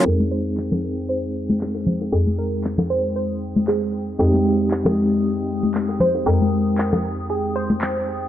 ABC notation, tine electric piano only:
X:1
M:4/4
L:1/8
Q:"Swing 16ths" 1/4=116
K:Fm
V:1 name="Tine electric piano"
z8 | z8 | [A,CEG]8- | [A,CEG]8 |]